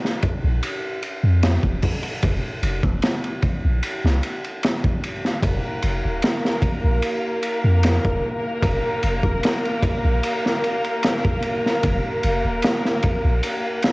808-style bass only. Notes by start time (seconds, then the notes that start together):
0.44 A#1
1.23 F2
1.63 D#1
2.23 F1
2.62 F1
2.83 D#1
3.64 A#1
4.04 C2
5.43 F1
5.83 F1
6.04 D#1
6.84 A#1
7.64 F2
8.05 D#1
8.62 F1
9.03 F1
9.23 D#1
10.04 A#1
11.83 F1
12.24 F1
12.44 D#1
13.24 A#1